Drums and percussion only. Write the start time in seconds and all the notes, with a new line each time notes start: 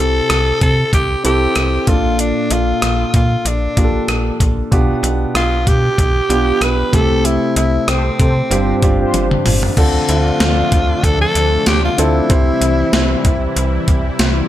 0.30 cross-stick, closed hi-hat
0.61 kick, closed hi-hat
0.93 kick, closed hi-hat
1.25 closed hi-hat
1.56 cross-stick, closed hi-hat
1.87 kick, closed hi-hat
2.19 closed hi-hat
2.51 closed hi-hat
2.82 cross-stick, closed hi-hat
3.14 kick, closed hi-hat
3.46 closed hi-hat
3.77 kick, closed hi-hat
4.08 cross-stick, closed hi-hat
4.40 kick, closed hi-hat
4.72 kick, closed hi-hat
5.04 closed hi-hat
5.35 cross-stick, closed hi-hat
5.67 kick, closed hi-hat
5.98 kick, closed hi-hat
6.30 closed hi-hat
6.61 cross-stick, closed hi-hat
6.93 kick, closed hi-hat
7.25 closed hi-hat
7.56 closed hi-hat
7.88 cross-stick, closed hi-hat
8.20 kick, closed hi-hat
8.51 closed hi-hat
8.82 kick, closed hi-hat
9.14 closed hi-hat, high tom
9.31 mid tom
9.46 mid tom, open hi-hat
9.63 floor tom
9.77 kick, closed hi-hat, crash
10.09 closed hi-hat
10.40 snare, closed hi-hat
10.72 kick, closed hi-hat
11.04 kick, closed hi-hat
11.35 closed hi-hat
11.66 snare, closed hi-hat
11.98 closed hi-hat
12.30 kick, closed hi-hat
12.62 closed hi-hat
12.93 snare, closed hi-hat
13.25 kick, closed hi-hat
13.57 closed hi-hat
13.88 kick, closed hi-hat
14.19 snare, closed hi-hat